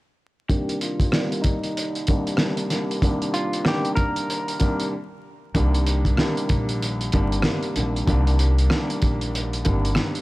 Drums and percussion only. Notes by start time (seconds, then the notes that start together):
0.50 kick, closed hi-hat
0.69 closed hi-hat
0.81 closed hi-hat
1.00 kick, closed hi-hat
1.12 cross-stick, snare
1.32 closed hi-hat
1.44 kick, closed hi-hat
1.64 closed hi-hat
1.77 closed hi-hat
1.95 closed hi-hat
2.07 kick, closed hi-hat
2.27 closed hi-hat
2.37 cross-stick, snare
2.57 closed hi-hat
2.70 snare, closed hi-hat
2.91 closed hi-hat
3.02 kick, closed hi-hat
3.22 closed hi-hat
3.34 closed hi-hat
3.53 closed hi-hat
3.65 cross-stick, snare
3.85 closed hi-hat
3.97 kick, closed hi-hat
4.16 closed hi-hat
4.30 closed hi-hat
4.48 closed hi-hat
4.60 kick, closed hi-hat
4.80 closed hi-hat
5.55 kick, closed hi-hat
5.74 closed hi-hat
5.86 closed hi-hat
6.05 kick, closed hi-hat
6.17 cross-stick, snare
6.37 closed hi-hat
6.49 kick, closed hi-hat
6.69 closed hi-hat
6.82 closed hi-hat
7.01 closed hi-hat
7.12 kick, closed hi-hat
7.32 closed hi-hat
7.42 cross-stick, snare
7.63 closed hi-hat
7.76 closed hi-hat
7.96 closed hi-hat
8.07 kick, closed hi-hat
8.27 closed hi-hat
8.39 closed hi-hat
8.58 closed hi-hat
8.70 cross-stick, snare
8.90 closed hi-hat
9.02 kick, closed hi-hat
9.21 closed hi-hat
9.35 closed hi-hat
9.53 closed hi-hat
9.65 kick, closed hi-hat
9.85 closed hi-hat
9.95 cross-stick, snare
10.15 closed hi-hat